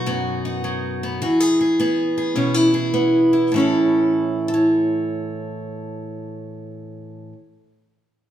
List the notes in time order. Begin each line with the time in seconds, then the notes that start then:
Already playing: B2 F#3 D#4 F#4
0.06 F#2 B3
0.45 D#4
0.64 F#3
1.03 B3
1.22 E3 F#4
1.40 G#4
1.61 G#4
1.80 B3 G#4
2.18 G#4
2.36 B2 C#4
2.54 E4
2.74 G#4
2.94 B3
3.33 E4
3.52 A2 E3
3.56 C#4 E4 A4
4.48 A4
4.54 C#5